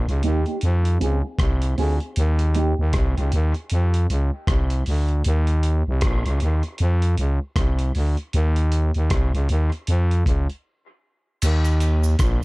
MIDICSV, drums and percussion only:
0, 0, Header, 1, 2, 480
1, 0, Start_track
1, 0, Key_signature, -4, "minor"
1, 0, Tempo, 771208
1, 1347, Time_signature, 4, 2, 24, 8
1, 7745, End_track
2, 0, Start_track
2, 0, Title_t, "Drums"
2, 54, Note_on_c, 9, 42, 42
2, 116, Note_off_c, 9, 42, 0
2, 142, Note_on_c, 9, 42, 67
2, 204, Note_off_c, 9, 42, 0
2, 285, Note_on_c, 9, 42, 33
2, 347, Note_off_c, 9, 42, 0
2, 380, Note_on_c, 9, 42, 73
2, 443, Note_off_c, 9, 42, 0
2, 530, Note_on_c, 9, 42, 50
2, 592, Note_off_c, 9, 42, 0
2, 630, Note_on_c, 9, 42, 61
2, 692, Note_off_c, 9, 42, 0
2, 862, Note_on_c, 9, 36, 97
2, 866, Note_on_c, 9, 42, 74
2, 868, Note_on_c, 9, 37, 92
2, 925, Note_off_c, 9, 36, 0
2, 929, Note_off_c, 9, 42, 0
2, 931, Note_off_c, 9, 37, 0
2, 1006, Note_on_c, 9, 42, 55
2, 1069, Note_off_c, 9, 42, 0
2, 1107, Note_on_c, 9, 46, 48
2, 1169, Note_off_c, 9, 46, 0
2, 1247, Note_on_c, 9, 42, 30
2, 1309, Note_off_c, 9, 42, 0
2, 1344, Note_on_c, 9, 42, 86
2, 1406, Note_off_c, 9, 42, 0
2, 1487, Note_on_c, 9, 42, 49
2, 1549, Note_off_c, 9, 42, 0
2, 1584, Note_on_c, 9, 42, 69
2, 1646, Note_off_c, 9, 42, 0
2, 1823, Note_on_c, 9, 42, 83
2, 1827, Note_on_c, 9, 36, 104
2, 1829, Note_on_c, 9, 37, 93
2, 1886, Note_off_c, 9, 42, 0
2, 1889, Note_off_c, 9, 36, 0
2, 1891, Note_off_c, 9, 37, 0
2, 1976, Note_on_c, 9, 42, 46
2, 2039, Note_off_c, 9, 42, 0
2, 2066, Note_on_c, 9, 42, 67
2, 2128, Note_off_c, 9, 42, 0
2, 2206, Note_on_c, 9, 42, 31
2, 2268, Note_off_c, 9, 42, 0
2, 2300, Note_on_c, 9, 42, 83
2, 2362, Note_off_c, 9, 42, 0
2, 2451, Note_on_c, 9, 42, 55
2, 2514, Note_off_c, 9, 42, 0
2, 2552, Note_on_c, 9, 42, 65
2, 2614, Note_off_c, 9, 42, 0
2, 2784, Note_on_c, 9, 36, 100
2, 2787, Note_on_c, 9, 42, 68
2, 2789, Note_on_c, 9, 37, 90
2, 2847, Note_off_c, 9, 36, 0
2, 2849, Note_off_c, 9, 42, 0
2, 2851, Note_off_c, 9, 37, 0
2, 2927, Note_on_c, 9, 42, 52
2, 2989, Note_off_c, 9, 42, 0
2, 3025, Note_on_c, 9, 46, 52
2, 3088, Note_off_c, 9, 46, 0
2, 3165, Note_on_c, 9, 42, 29
2, 3227, Note_off_c, 9, 42, 0
2, 3264, Note_on_c, 9, 42, 90
2, 3327, Note_off_c, 9, 42, 0
2, 3405, Note_on_c, 9, 42, 51
2, 3467, Note_off_c, 9, 42, 0
2, 3505, Note_on_c, 9, 42, 64
2, 3567, Note_off_c, 9, 42, 0
2, 3742, Note_on_c, 9, 42, 83
2, 3747, Note_on_c, 9, 36, 102
2, 3747, Note_on_c, 9, 37, 101
2, 3804, Note_off_c, 9, 42, 0
2, 3809, Note_off_c, 9, 36, 0
2, 3809, Note_off_c, 9, 37, 0
2, 3894, Note_on_c, 9, 42, 49
2, 3956, Note_off_c, 9, 42, 0
2, 3984, Note_on_c, 9, 42, 62
2, 4046, Note_off_c, 9, 42, 0
2, 4127, Note_on_c, 9, 42, 34
2, 4189, Note_off_c, 9, 42, 0
2, 4220, Note_on_c, 9, 42, 73
2, 4282, Note_off_c, 9, 42, 0
2, 4370, Note_on_c, 9, 42, 54
2, 4432, Note_off_c, 9, 42, 0
2, 4466, Note_on_c, 9, 42, 67
2, 4528, Note_off_c, 9, 42, 0
2, 4704, Note_on_c, 9, 36, 90
2, 4705, Note_on_c, 9, 42, 76
2, 4707, Note_on_c, 9, 37, 90
2, 4766, Note_off_c, 9, 36, 0
2, 4767, Note_off_c, 9, 42, 0
2, 4769, Note_off_c, 9, 37, 0
2, 4846, Note_on_c, 9, 42, 56
2, 4908, Note_off_c, 9, 42, 0
2, 4947, Note_on_c, 9, 46, 48
2, 5009, Note_off_c, 9, 46, 0
2, 5086, Note_on_c, 9, 42, 32
2, 5149, Note_off_c, 9, 42, 0
2, 5186, Note_on_c, 9, 42, 80
2, 5248, Note_off_c, 9, 42, 0
2, 5328, Note_on_c, 9, 42, 49
2, 5391, Note_off_c, 9, 42, 0
2, 5426, Note_on_c, 9, 42, 68
2, 5488, Note_off_c, 9, 42, 0
2, 5567, Note_on_c, 9, 42, 32
2, 5629, Note_off_c, 9, 42, 0
2, 5665, Note_on_c, 9, 42, 82
2, 5669, Note_on_c, 9, 36, 94
2, 5671, Note_on_c, 9, 37, 101
2, 5727, Note_off_c, 9, 42, 0
2, 5731, Note_off_c, 9, 36, 0
2, 5733, Note_off_c, 9, 37, 0
2, 5817, Note_on_c, 9, 42, 46
2, 5879, Note_off_c, 9, 42, 0
2, 5907, Note_on_c, 9, 42, 62
2, 5969, Note_off_c, 9, 42, 0
2, 6051, Note_on_c, 9, 42, 35
2, 6114, Note_off_c, 9, 42, 0
2, 6144, Note_on_c, 9, 42, 78
2, 6206, Note_off_c, 9, 42, 0
2, 6294, Note_on_c, 9, 42, 47
2, 6356, Note_off_c, 9, 42, 0
2, 6386, Note_on_c, 9, 36, 65
2, 6392, Note_on_c, 9, 42, 62
2, 6449, Note_off_c, 9, 36, 0
2, 6454, Note_off_c, 9, 42, 0
2, 6533, Note_on_c, 9, 42, 30
2, 6595, Note_off_c, 9, 42, 0
2, 7108, Note_on_c, 9, 42, 87
2, 7108, Note_on_c, 9, 49, 88
2, 7110, Note_on_c, 9, 69, 77
2, 7170, Note_off_c, 9, 42, 0
2, 7170, Note_off_c, 9, 49, 0
2, 7172, Note_off_c, 9, 69, 0
2, 7248, Note_on_c, 9, 42, 48
2, 7252, Note_on_c, 9, 69, 55
2, 7310, Note_off_c, 9, 42, 0
2, 7314, Note_off_c, 9, 69, 0
2, 7347, Note_on_c, 9, 42, 69
2, 7350, Note_on_c, 9, 69, 48
2, 7409, Note_off_c, 9, 42, 0
2, 7412, Note_off_c, 9, 69, 0
2, 7490, Note_on_c, 9, 69, 72
2, 7553, Note_off_c, 9, 69, 0
2, 7586, Note_on_c, 9, 42, 87
2, 7589, Note_on_c, 9, 36, 115
2, 7590, Note_on_c, 9, 69, 82
2, 7592, Note_on_c, 9, 37, 102
2, 7648, Note_off_c, 9, 42, 0
2, 7652, Note_off_c, 9, 36, 0
2, 7652, Note_off_c, 9, 69, 0
2, 7654, Note_off_c, 9, 37, 0
2, 7745, End_track
0, 0, End_of_file